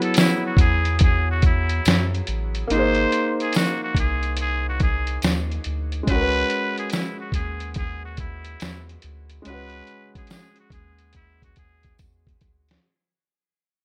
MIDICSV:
0, 0, Header, 1, 5, 480
1, 0, Start_track
1, 0, Tempo, 845070
1, 1531, Time_signature, 4, 2, 24, 8
1, 7862, End_track
2, 0, Start_track
2, 0, Title_t, "Muted trumpet"
2, 0, Program_c, 0, 59
2, 23, Note_on_c, 0, 69, 72
2, 91, Note_off_c, 0, 69, 0
2, 104, Note_on_c, 0, 64, 75
2, 239, Note_off_c, 0, 64, 0
2, 263, Note_on_c, 0, 66, 64
2, 331, Note_off_c, 0, 66, 0
2, 344, Note_on_c, 0, 68, 79
2, 555, Note_off_c, 0, 68, 0
2, 588, Note_on_c, 0, 68, 81
2, 744, Note_on_c, 0, 66, 76
2, 752, Note_off_c, 0, 68, 0
2, 812, Note_off_c, 0, 66, 0
2, 828, Note_on_c, 0, 64, 77
2, 1193, Note_off_c, 0, 64, 0
2, 1547, Note_on_c, 0, 72, 103
2, 1913, Note_off_c, 0, 72, 0
2, 1944, Note_on_c, 0, 68, 75
2, 2025, Note_on_c, 0, 66, 83
2, 2034, Note_off_c, 0, 68, 0
2, 2160, Note_off_c, 0, 66, 0
2, 2180, Note_on_c, 0, 66, 73
2, 2250, Note_off_c, 0, 66, 0
2, 2270, Note_on_c, 0, 68, 73
2, 2478, Note_off_c, 0, 68, 0
2, 2508, Note_on_c, 0, 68, 85
2, 2641, Note_off_c, 0, 68, 0
2, 2663, Note_on_c, 0, 66, 77
2, 2731, Note_off_c, 0, 66, 0
2, 2743, Note_on_c, 0, 68, 76
2, 2955, Note_off_c, 0, 68, 0
2, 3462, Note_on_c, 0, 71, 115
2, 3830, Note_off_c, 0, 71, 0
2, 3857, Note_on_c, 0, 68, 80
2, 3928, Note_off_c, 0, 68, 0
2, 3932, Note_on_c, 0, 64, 69
2, 4072, Note_off_c, 0, 64, 0
2, 4088, Note_on_c, 0, 66, 71
2, 4163, Note_off_c, 0, 66, 0
2, 4174, Note_on_c, 0, 68, 77
2, 4390, Note_off_c, 0, 68, 0
2, 4420, Note_on_c, 0, 68, 84
2, 4557, Note_off_c, 0, 68, 0
2, 4573, Note_on_c, 0, 66, 70
2, 4646, Note_off_c, 0, 66, 0
2, 4657, Note_on_c, 0, 64, 79
2, 5028, Note_off_c, 0, 64, 0
2, 5382, Note_on_c, 0, 71, 110
2, 5750, Note_off_c, 0, 71, 0
2, 5779, Note_on_c, 0, 68, 76
2, 5849, Note_off_c, 0, 68, 0
2, 5863, Note_on_c, 0, 68, 84
2, 5998, Note_off_c, 0, 68, 0
2, 6021, Note_on_c, 0, 66, 70
2, 6090, Note_off_c, 0, 66, 0
2, 6095, Note_on_c, 0, 68, 72
2, 6311, Note_off_c, 0, 68, 0
2, 6339, Note_on_c, 0, 64, 91
2, 6476, Note_off_c, 0, 64, 0
2, 6498, Note_on_c, 0, 66, 76
2, 6569, Note_off_c, 0, 66, 0
2, 6580, Note_on_c, 0, 68, 79
2, 6793, Note_off_c, 0, 68, 0
2, 7862, End_track
3, 0, Start_track
3, 0, Title_t, "Felt piano"
3, 0, Program_c, 1, 0
3, 0, Control_c, 1, 64, 127
3, 0, Note_on_c, 1, 54, 70
3, 0, Note_on_c, 1, 59, 65
3, 0, Note_on_c, 1, 64, 56
3, 0, Note_on_c, 1, 68, 73
3, 0, Note_on_c, 1, 73, 63
3, 1497, Note_off_c, 1, 54, 0
3, 1507, Note_off_c, 1, 59, 0
3, 1518, Note_off_c, 1, 64, 0
3, 1520, Note_on_c, 1, 58, 70
3, 1529, Note_off_c, 1, 68, 0
3, 1539, Control_c, 1, 64, 0
3, 1541, Note_on_c, 1, 63, 64
3, 1543, Note_off_c, 1, 73, 0
3, 1563, Note_on_c, 1, 68, 58
3, 1585, Note_on_c, 1, 72, 76
3, 1639, Control_c, 1, 64, 127
3, 3423, Note_off_c, 1, 58, 0
3, 3426, Note_on_c, 1, 56, 57
3, 3433, Note_off_c, 1, 63, 0
3, 3444, Note_off_c, 1, 68, 0
3, 3449, Note_on_c, 1, 61, 62
3, 3455, Note_off_c, 1, 72, 0
3, 3457, Control_c, 1, 64, 0
3, 3472, Note_on_c, 1, 66, 66
3, 3491, Note_on_c, 1, 70, 62
3, 3519, Note_off_c, 1, 70, 0
3, 3529, Note_on_c, 1, 71, 74
3, 3556, Control_c, 1, 64, 127
3, 5336, Note_off_c, 1, 56, 0
3, 5347, Note_off_c, 1, 61, 0
3, 5350, Note_on_c, 1, 56, 66
3, 5359, Note_off_c, 1, 66, 0
3, 5372, Note_on_c, 1, 61, 67
3, 5387, Note_off_c, 1, 71, 0
3, 5395, Note_on_c, 1, 66, 66
3, 5416, Note_on_c, 1, 71, 74
3, 7258, Note_off_c, 1, 56, 0
3, 7269, Note_off_c, 1, 61, 0
3, 7280, Note_off_c, 1, 66, 0
3, 7291, Note_off_c, 1, 71, 0
3, 7299, Control_c, 1, 64, 0
3, 7862, End_track
4, 0, Start_track
4, 0, Title_t, "Analog synth bass"
4, 0, Program_c, 2, 38
4, 324, Note_on_c, 2, 40, 93
4, 1025, Note_off_c, 2, 40, 0
4, 1059, Note_on_c, 2, 42, 99
4, 1259, Note_off_c, 2, 42, 0
4, 1298, Note_on_c, 2, 33, 87
4, 1498, Note_off_c, 2, 33, 0
4, 1537, Note_on_c, 2, 32, 114
4, 1738, Note_off_c, 2, 32, 0
4, 2244, Note_on_c, 2, 36, 98
4, 2945, Note_off_c, 2, 36, 0
4, 2974, Note_on_c, 2, 39, 99
4, 3176, Note_off_c, 2, 39, 0
4, 3217, Note_on_c, 2, 38, 96
4, 3418, Note_off_c, 2, 38, 0
4, 3452, Note_on_c, 2, 37, 110
4, 3655, Note_off_c, 2, 37, 0
4, 4161, Note_on_c, 2, 39, 82
4, 4863, Note_off_c, 2, 39, 0
4, 4896, Note_on_c, 2, 40, 82
4, 5097, Note_off_c, 2, 40, 0
4, 5136, Note_on_c, 2, 38, 86
4, 5338, Note_off_c, 2, 38, 0
4, 5377, Note_on_c, 2, 37, 104
4, 5578, Note_off_c, 2, 37, 0
4, 6084, Note_on_c, 2, 39, 87
4, 6785, Note_off_c, 2, 39, 0
4, 6814, Note_on_c, 2, 40, 86
4, 7016, Note_off_c, 2, 40, 0
4, 7055, Note_on_c, 2, 38, 87
4, 7257, Note_off_c, 2, 38, 0
4, 7862, End_track
5, 0, Start_track
5, 0, Title_t, "Drums"
5, 10, Note_on_c, 9, 42, 48
5, 67, Note_off_c, 9, 42, 0
5, 80, Note_on_c, 9, 42, 78
5, 94, Note_on_c, 9, 54, 67
5, 101, Note_on_c, 9, 38, 103
5, 137, Note_off_c, 9, 42, 0
5, 151, Note_off_c, 9, 54, 0
5, 158, Note_off_c, 9, 38, 0
5, 322, Note_on_c, 9, 36, 82
5, 332, Note_on_c, 9, 42, 70
5, 379, Note_off_c, 9, 36, 0
5, 389, Note_off_c, 9, 42, 0
5, 483, Note_on_c, 9, 42, 42
5, 540, Note_off_c, 9, 42, 0
5, 562, Note_on_c, 9, 42, 85
5, 572, Note_on_c, 9, 36, 91
5, 619, Note_off_c, 9, 42, 0
5, 629, Note_off_c, 9, 36, 0
5, 808, Note_on_c, 9, 42, 61
5, 811, Note_on_c, 9, 36, 84
5, 865, Note_off_c, 9, 42, 0
5, 868, Note_off_c, 9, 36, 0
5, 962, Note_on_c, 9, 42, 51
5, 1019, Note_off_c, 9, 42, 0
5, 1052, Note_on_c, 9, 54, 54
5, 1054, Note_on_c, 9, 42, 85
5, 1067, Note_on_c, 9, 38, 115
5, 1109, Note_off_c, 9, 54, 0
5, 1111, Note_off_c, 9, 42, 0
5, 1124, Note_off_c, 9, 38, 0
5, 1219, Note_on_c, 9, 42, 34
5, 1276, Note_off_c, 9, 42, 0
5, 1289, Note_on_c, 9, 42, 60
5, 1346, Note_off_c, 9, 42, 0
5, 1447, Note_on_c, 9, 42, 43
5, 1503, Note_off_c, 9, 42, 0
5, 1535, Note_on_c, 9, 42, 93
5, 1592, Note_off_c, 9, 42, 0
5, 1673, Note_on_c, 9, 42, 34
5, 1730, Note_off_c, 9, 42, 0
5, 1774, Note_on_c, 9, 42, 69
5, 1831, Note_off_c, 9, 42, 0
5, 1932, Note_on_c, 9, 42, 52
5, 1989, Note_off_c, 9, 42, 0
5, 2003, Note_on_c, 9, 42, 73
5, 2013, Note_on_c, 9, 54, 66
5, 2024, Note_on_c, 9, 38, 94
5, 2059, Note_off_c, 9, 42, 0
5, 2070, Note_off_c, 9, 54, 0
5, 2081, Note_off_c, 9, 38, 0
5, 2242, Note_on_c, 9, 36, 80
5, 2252, Note_on_c, 9, 42, 69
5, 2298, Note_off_c, 9, 36, 0
5, 2309, Note_off_c, 9, 42, 0
5, 2402, Note_on_c, 9, 42, 46
5, 2458, Note_off_c, 9, 42, 0
5, 2480, Note_on_c, 9, 42, 77
5, 2537, Note_off_c, 9, 42, 0
5, 2725, Note_on_c, 9, 42, 61
5, 2729, Note_on_c, 9, 36, 87
5, 2782, Note_off_c, 9, 42, 0
5, 2785, Note_off_c, 9, 36, 0
5, 2879, Note_on_c, 9, 42, 48
5, 2936, Note_off_c, 9, 42, 0
5, 2966, Note_on_c, 9, 42, 85
5, 2970, Note_on_c, 9, 54, 60
5, 2979, Note_on_c, 9, 38, 116
5, 3023, Note_off_c, 9, 42, 0
5, 3026, Note_off_c, 9, 54, 0
5, 3036, Note_off_c, 9, 38, 0
5, 3133, Note_on_c, 9, 42, 33
5, 3190, Note_off_c, 9, 42, 0
5, 3204, Note_on_c, 9, 42, 59
5, 3261, Note_off_c, 9, 42, 0
5, 3363, Note_on_c, 9, 42, 44
5, 3420, Note_off_c, 9, 42, 0
5, 3450, Note_on_c, 9, 36, 120
5, 3451, Note_on_c, 9, 42, 83
5, 3507, Note_off_c, 9, 36, 0
5, 3508, Note_off_c, 9, 42, 0
5, 3588, Note_on_c, 9, 42, 33
5, 3645, Note_off_c, 9, 42, 0
5, 3691, Note_on_c, 9, 42, 70
5, 3748, Note_off_c, 9, 42, 0
5, 3849, Note_on_c, 9, 42, 48
5, 3905, Note_off_c, 9, 42, 0
5, 3917, Note_on_c, 9, 42, 77
5, 3933, Note_on_c, 9, 54, 63
5, 3939, Note_on_c, 9, 38, 89
5, 3974, Note_off_c, 9, 42, 0
5, 3990, Note_off_c, 9, 54, 0
5, 3996, Note_off_c, 9, 38, 0
5, 4159, Note_on_c, 9, 36, 76
5, 4167, Note_on_c, 9, 42, 71
5, 4215, Note_off_c, 9, 36, 0
5, 4224, Note_off_c, 9, 42, 0
5, 4318, Note_on_c, 9, 42, 51
5, 4375, Note_off_c, 9, 42, 0
5, 4398, Note_on_c, 9, 42, 81
5, 4408, Note_on_c, 9, 36, 93
5, 4455, Note_off_c, 9, 42, 0
5, 4465, Note_off_c, 9, 36, 0
5, 4642, Note_on_c, 9, 42, 64
5, 4646, Note_on_c, 9, 36, 76
5, 4698, Note_off_c, 9, 42, 0
5, 4703, Note_off_c, 9, 36, 0
5, 4797, Note_on_c, 9, 42, 54
5, 4854, Note_off_c, 9, 42, 0
5, 4884, Note_on_c, 9, 42, 94
5, 4889, Note_on_c, 9, 54, 55
5, 4898, Note_on_c, 9, 38, 117
5, 4941, Note_off_c, 9, 42, 0
5, 4946, Note_off_c, 9, 54, 0
5, 4954, Note_off_c, 9, 38, 0
5, 5052, Note_on_c, 9, 42, 37
5, 5108, Note_off_c, 9, 42, 0
5, 5124, Note_on_c, 9, 42, 59
5, 5181, Note_off_c, 9, 42, 0
5, 5280, Note_on_c, 9, 42, 43
5, 5337, Note_off_c, 9, 42, 0
5, 5368, Note_on_c, 9, 42, 85
5, 5425, Note_off_c, 9, 42, 0
5, 5507, Note_on_c, 9, 42, 35
5, 5564, Note_off_c, 9, 42, 0
5, 5607, Note_on_c, 9, 42, 65
5, 5664, Note_off_c, 9, 42, 0
5, 5767, Note_on_c, 9, 36, 91
5, 5767, Note_on_c, 9, 42, 49
5, 5824, Note_off_c, 9, 36, 0
5, 5824, Note_off_c, 9, 42, 0
5, 5834, Note_on_c, 9, 42, 64
5, 5852, Note_on_c, 9, 54, 65
5, 5855, Note_on_c, 9, 38, 98
5, 5891, Note_off_c, 9, 42, 0
5, 5909, Note_off_c, 9, 54, 0
5, 5912, Note_off_c, 9, 38, 0
5, 5996, Note_on_c, 9, 42, 38
5, 6053, Note_off_c, 9, 42, 0
5, 6080, Note_on_c, 9, 36, 90
5, 6088, Note_on_c, 9, 42, 67
5, 6137, Note_off_c, 9, 36, 0
5, 6145, Note_off_c, 9, 42, 0
5, 6240, Note_on_c, 9, 42, 45
5, 6296, Note_off_c, 9, 42, 0
5, 6320, Note_on_c, 9, 42, 72
5, 6332, Note_on_c, 9, 36, 49
5, 6377, Note_off_c, 9, 42, 0
5, 6388, Note_off_c, 9, 36, 0
5, 6488, Note_on_c, 9, 36, 58
5, 6492, Note_on_c, 9, 42, 38
5, 6545, Note_off_c, 9, 36, 0
5, 6549, Note_off_c, 9, 42, 0
5, 6566, Note_on_c, 9, 42, 63
5, 6572, Note_on_c, 9, 36, 63
5, 6622, Note_off_c, 9, 42, 0
5, 6628, Note_off_c, 9, 36, 0
5, 6721, Note_on_c, 9, 42, 54
5, 6728, Note_on_c, 9, 36, 63
5, 6778, Note_off_c, 9, 42, 0
5, 6785, Note_off_c, 9, 36, 0
5, 6807, Note_on_c, 9, 54, 52
5, 6811, Note_on_c, 9, 42, 90
5, 6812, Note_on_c, 9, 36, 90
5, 6864, Note_off_c, 9, 54, 0
5, 6867, Note_off_c, 9, 42, 0
5, 6869, Note_off_c, 9, 36, 0
5, 6968, Note_on_c, 9, 36, 83
5, 6978, Note_on_c, 9, 42, 32
5, 7025, Note_off_c, 9, 36, 0
5, 7035, Note_off_c, 9, 42, 0
5, 7048, Note_on_c, 9, 42, 63
5, 7052, Note_on_c, 9, 36, 89
5, 7105, Note_off_c, 9, 42, 0
5, 7108, Note_off_c, 9, 36, 0
5, 7205, Note_on_c, 9, 42, 40
5, 7219, Note_on_c, 9, 38, 88
5, 7262, Note_off_c, 9, 42, 0
5, 7276, Note_off_c, 9, 38, 0
5, 7862, End_track
0, 0, End_of_file